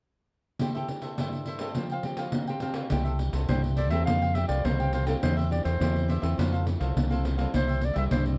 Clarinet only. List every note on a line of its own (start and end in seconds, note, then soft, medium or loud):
3.49 3.62 C5 medium
3.77 3.90 D5 medium
3.90 4.05 E5 medium
4.05 4.36 F5 medium
4.35 4.47 E5 medium
4.48 4.66 D5 medium
4.65 4.93 C5 medium
4.94 5.07 C5 medium
5.07 5.14 A4 medium
5.23 5.36 C5 medium
5.52 5.64 D5 medium
5.65 6.19 C5 medium
7.55 7.86 C5 medium
7.85 7.97 D5 medium
7.98 8.04 E5 medium
8.12 8.25 C5 medium